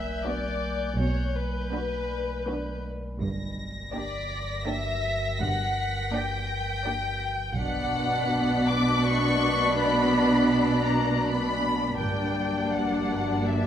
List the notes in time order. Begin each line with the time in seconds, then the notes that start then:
Already playing: B1 E5 F#6 G6, impact
0.24 B3 D4 F#4 B4 D5
0.98 B1 B2 C#5
1.36 B4
1.73 B3 D4 F#4 B4
2.48 B3 D4 F#4 B4
3.21 G1 G2 A#6
3.93 A#3 D4 G4 D5 B6
4.68 A#3 D4 G4 D5 E5
5.41 G1 G2 F#5
6.13 A#3 D4 G4 D5 G5
6.85 A#3 D4 G4 D5
7.58 B1 B2 B3 D4 D5 F#5 F#6 B6
8.68 D6
9.04 C#6
9.78 B5
10.87 A#5
11.24 B5
11.98 G1 G2 A#3 D4 D5 G5
12.72 F#5
13.46 E5